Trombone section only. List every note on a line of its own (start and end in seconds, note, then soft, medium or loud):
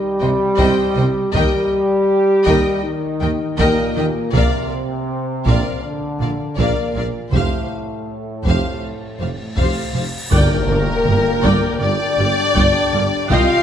0.00 1.31 G3 loud
1.34 2.81 G3 medium
2.85 3.58 D#3 medium
3.60 4.35 A#2 medium
4.35 5.66 C3 medium
5.83 6.57 D3 medium
6.58 7.33 A#2 medium
7.32 9.94 A2 medium
10.30 13.26 D3 medium
10.30 13.63 G3 medium
13.31 13.63 D#3 medium